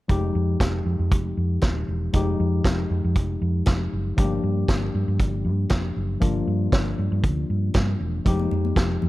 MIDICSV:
0, 0, Header, 1, 4, 480
1, 0, Start_track
1, 0, Tempo, 509771
1, 90, Time_signature, 4, 2, 24, 8
1, 8558, End_track
2, 0, Start_track
2, 0, Title_t, "Tine electric piano"
2, 0, Program_c, 0, 4
2, 79, Note_on_c, 0, 53, 63
2, 89, Note_on_c, 0, 56, 64
2, 98, Note_on_c, 0, 63, 57
2, 106, Note_on_c, 0, 67, 79
2, 245, Control_c, 0, 64, 127
2, 1970, Note_off_c, 0, 53, 0
2, 1976, Note_off_c, 0, 56, 0
2, 1980, Note_off_c, 0, 63, 0
2, 1984, Note_off_c, 0, 67, 0
2, 2004, Note_on_c, 0, 53, 62
2, 2014, Note_on_c, 0, 56, 67
2, 2025, Note_on_c, 0, 63, 61
2, 2033, Note_on_c, 0, 67, 72
2, 3893, Note_off_c, 0, 53, 0
2, 3898, Note_off_c, 0, 56, 0
2, 3903, Note_off_c, 0, 63, 0
2, 3908, Note_off_c, 0, 67, 0
2, 3923, Note_on_c, 0, 53, 65
2, 3934, Note_on_c, 0, 57, 51
2, 3945, Note_on_c, 0, 62, 63
2, 3947, Control_c, 0, 64, 0
2, 3953, Note_on_c, 0, 67, 73
2, 3991, Note_on_c, 0, 58, 59
2, 3996, Note_off_c, 0, 57, 0
2, 4138, Control_c, 0, 64, 127
2, 5812, Note_off_c, 0, 53, 0
2, 5823, Note_off_c, 0, 62, 0
2, 5827, Note_off_c, 0, 67, 0
2, 5835, Note_off_c, 0, 58, 0
2, 5838, Note_on_c, 0, 53, 62
2, 5846, Note_on_c, 0, 58, 68
2, 5856, Note_on_c, 0, 62, 58
2, 5868, Note_on_c, 0, 65, 66
2, 7728, Note_off_c, 0, 53, 0
2, 7732, Note_off_c, 0, 58, 0
2, 7737, Note_off_c, 0, 62, 0
2, 7743, Note_off_c, 0, 65, 0
2, 7767, Note_on_c, 0, 53, 70
2, 7776, Note_on_c, 0, 56, 61
2, 7786, Control_c, 0, 64, 0
2, 7786, Note_on_c, 0, 63, 62
2, 7795, Note_on_c, 0, 67, 81
2, 7947, Control_c, 0, 64, 127
2, 8558, Note_off_c, 0, 53, 0
2, 8558, Note_off_c, 0, 56, 0
2, 8558, Note_off_c, 0, 63, 0
2, 8558, Note_off_c, 0, 67, 0
2, 8558, End_track
3, 0, Start_track
3, 0, Title_t, "Fingered electric bass"
3, 0, Program_c, 1, 33
3, 89, Note_on_c, 1, 29, 87
3, 273, Note_off_c, 1, 29, 0
3, 330, Note_on_c, 1, 41, 90
3, 514, Note_off_c, 1, 41, 0
3, 567, Note_on_c, 1, 29, 82
3, 753, Note_off_c, 1, 29, 0
3, 806, Note_on_c, 1, 41, 75
3, 905, Note_off_c, 1, 41, 0
3, 936, Note_on_c, 1, 41, 83
3, 1051, Note_on_c, 1, 29, 84
3, 1065, Note_off_c, 1, 41, 0
3, 1235, Note_off_c, 1, 29, 0
3, 1293, Note_on_c, 1, 41, 73
3, 1476, Note_off_c, 1, 41, 0
3, 1536, Note_on_c, 1, 27, 82
3, 1719, Note_off_c, 1, 27, 0
3, 1772, Note_on_c, 1, 28, 81
3, 1956, Note_off_c, 1, 28, 0
3, 2015, Note_on_c, 1, 29, 92
3, 2198, Note_off_c, 1, 29, 0
3, 2256, Note_on_c, 1, 41, 87
3, 2439, Note_off_c, 1, 41, 0
3, 2492, Note_on_c, 1, 29, 81
3, 2676, Note_off_c, 1, 29, 0
3, 2734, Note_on_c, 1, 41, 80
3, 2832, Note_off_c, 1, 41, 0
3, 2866, Note_on_c, 1, 41, 85
3, 2951, Note_off_c, 1, 41, 0
3, 2974, Note_on_c, 1, 29, 91
3, 3158, Note_off_c, 1, 29, 0
3, 3216, Note_on_c, 1, 41, 87
3, 3399, Note_off_c, 1, 41, 0
3, 3456, Note_on_c, 1, 29, 86
3, 3639, Note_off_c, 1, 29, 0
3, 3701, Note_on_c, 1, 30, 86
3, 3882, Note_off_c, 1, 30, 0
3, 3933, Note_on_c, 1, 31, 84
3, 4118, Note_off_c, 1, 31, 0
3, 4176, Note_on_c, 1, 43, 79
3, 4359, Note_off_c, 1, 43, 0
3, 4412, Note_on_c, 1, 31, 89
3, 4597, Note_off_c, 1, 31, 0
3, 4657, Note_on_c, 1, 43, 81
3, 4754, Note_off_c, 1, 43, 0
3, 4782, Note_on_c, 1, 43, 92
3, 4869, Note_off_c, 1, 43, 0
3, 4892, Note_on_c, 1, 31, 96
3, 5127, Note_on_c, 1, 43, 85
3, 5141, Note_off_c, 1, 31, 0
3, 5314, Note_off_c, 1, 43, 0
3, 5373, Note_on_c, 1, 29, 73
3, 5558, Note_off_c, 1, 29, 0
3, 5617, Note_on_c, 1, 30, 79
3, 5800, Note_off_c, 1, 30, 0
3, 5854, Note_on_c, 1, 31, 87
3, 6038, Note_off_c, 1, 31, 0
3, 6096, Note_on_c, 1, 43, 87
3, 6279, Note_off_c, 1, 43, 0
3, 6330, Note_on_c, 1, 31, 99
3, 6516, Note_off_c, 1, 31, 0
3, 6577, Note_on_c, 1, 43, 79
3, 6674, Note_off_c, 1, 43, 0
3, 6702, Note_on_c, 1, 43, 90
3, 6788, Note_off_c, 1, 43, 0
3, 6814, Note_on_c, 1, 38, 71
3, 6998, Note_off_c, 1, 38, 0
3, 7060, Note_on_c, 1, 43, 76
3, 7241, Note_off_c, 1, 43, 0
3, 7296, Note_on_c, 1, 43, 92
3, 7479, Note_off_c, 1, 43, 0
3, 7536, Note_on_c, 1, 28, 79
3, 7719, Note_off_c, 1, 28, 0
3, 7774, Note_on_c, 1, 29, 89
3, 7957, Note_off_c, 1, 29, 0
3, 8017, Note_on_c, 1, 41, 86
3, 8199, Note_off_c, 1, 41, 0
3, 8253, Note_on_c, 1, 29, 82
3, 8437, Note_off_c, 1, 29, 0
3, 8499, Note_on_c, 1, 41, 83
3, 8558, Note_off_c, 1, 41, 0
3, 8558, End_track
4, 0, Start_track
4, 0, Title_t, "Drums"
4, 87, Note_on_c, 9, 42, 52
4, 89, Note_on_c, 9, 36, 81
4, 181, Note_off_c, 9, 42, 0
4, 183, Note_off_c, 9, 36, 0
4, 566, Note_on_c, 9, 36, 97
4, 571, Note_on_c, 9, 38, 102
4, 572, Note_on_c, 9, 42, 66
4, 660, Note_off_c, 9, 36, 0
4, 665, Note_off_c, 9, 38, 0
4, 666, Note_off_c, 9, 42, 0
4, 1051, Note_on_c, 9, 36, 104
4, 1051, Note_on_c, 9, 42, 57
4, 1145, Note_off_c, 9, 36, 0
4, 1145, Note_off_c, 9, 42, 0
4, 1520, Note_on_c, 9, 42, 56
4, 1526, Note_on_c, 9, 38, 81
4, 1533, Note_on_c, 9, 36, 102
4, 1614, Note_off_c, 9, 42, 0
4, 1620, Note_off_c, 9, 38, 0
4, 1627, Note_off_c, 9, 36, 0
4, 2009, Note_on_c, 9, 42, 51
4, 2013, Note_on_c, 9, 36, 86
4, 2103, Note_off_c, 9, 42, 0
4, 2108, Note_off_c, 9, 36, 0
4, 2490, Note_on_c, 9, 36, 96
4, 2496, Note_on_c, 9, 38, 100
4, 2497, Note_on_c, 9, 42, 57
4, 2585, Note_off_c, 9, 36, 0
4, 2590, Note_off_c, 9, 38, 0
4, 2591, Note_off_c, 9, 42, 0
4, 2973, Note_on_c, 9, 36, 102
4, 2973, Note_on_c, 9, 42, 58
4, 3067, Note_off_c, 9, 36, 0
4, 3067, Note_off_c, 9, 42, 0
4, 3443, Note_on_c, 9, 42, 59
4, 3450, Note_on_c, 9, 38, 79
4, 3456, Note_on_c, 9, 36, 105
4, 3537, Note_off_c, 9, 42, 0
4, 3544, Note_off_c, 9, 38, 0
4, 3550, Note_off_c, 9, 36, 0
4, 3934, Note_on_c, 9, 42, 55
4, 3935, Note_on_c, 9, 36, 91
4, 4028, Note_off_c, 9, 42, 0
4, 4029, Note_off_c, 9, 36, 0
4, 4411, Note_on_c, 9, 36, 97
4, 4413, Note_on_c, 9, 38, 100
4, 4414, Note_on_c, 9, 42, 60
4, 4505, Note_off_c, 9, 36, 0
4, 4507, Note_off_c, 9, 38, 0
4, 4508, Note_off_c, 9, 42, 0
4, 4890, Note_on_c, 9, 42, 58
4, 4892, Note_on_c, 9, 36, 96
4, 4984, Note_off_c, 9, 42, 0
4, 4987, Note_off_c, 9, 36, 0
4, 5362, Note_on_c, 9, 42, 58
4, 5368, Note_on_c, 9, 38, 85
4, 5374, Note_on_c, 9, 36, 92
4, 5456, Note_off_c, 9, 42, 0
4, 5462, Note_off_c, 9, 38, 0
4, 5469, Note_off_c, 9, 36, 0
4, 5852, Note_on_c, 9, 42, 59
4, 5854, Note_on_c, 9, 36, 83
4, 5946, Note_off_c, 9, 42, 0
4, 5948, Note_off_c, 9, 36, 0
4, 6331, Note_on_c, 9, 36, 96
4, 6333, Note_on_c, 9, 38, 100
4, 6335, Note_on_c, 9, 42, 58
4, 6425, Note_off_c, 9, 36, 0
4, 6428, Note_off_c, 9, 38, 0
4, 6429, Note_off_c, 9, 42, 0
4, 6813, Note_on_c, 9, 42, 53
4, 6814, Note_on_c, 9, 36, 102
4, 6907, Note_off_c, 9, 42, 0
4, 6908, Note_off_c, 9, 36, 0
4, 7287, Note_on_c, 9, 42, 58
4, 7293, Note_on_c, 9, 38, 83
4, 7295, Note_on_c, 9, 36, 102
4, 7381, Note_off_c, 9, 42, 0
4, 7387, Note_off_c, 9, 38, 0
4, 7390, Note_off_c, 9, 36, 0
4, 7775, Note_on_c, 9, 36, 85
4, 7777, Note_on_c, 9, 42, 54
4, 7870, Note_off_c, 9, 36, 0
4, 7871, Note_off_c, 9, 42, 0
4, 7905, Note_on_c, 9, 63, 67
4, 7999, Note_off_c, 9, 63, 0
4, 8016, Note_on_c, 9, 62, 35
4, 8110, Note_off_c, 9, 62, 0
4, 8143, Note_on_c, 9, 63, 74
4, 8237, Note_off_c, 9, 63, 0
4, 8251, Note_on_c, 9, 36, 94
4, 8257, Note_on_c, 9, 38, 96
4, 8257, Note_on_c, 9, 62, 32
4, 8258, Note_on_c, 9, 42, 58
4, 8345, Note_off_c, 9, 36, 0
4, 8351, Note_off_c, 9, 38, 0
4, 8351, Note_off_c, 9, 62, 0
4, 8353, Note_off_c, 9, 42, 0
4, 8493, Note_on_c, 9, 63, 56
4, 8493, Note_on_c, 9, 64, 65
4, 8558, Note_off_c, 9, 63, 0
4, 8558, Note_off_c, 9, 64, 0
4, 8558, End_track
0, 0, End_of_file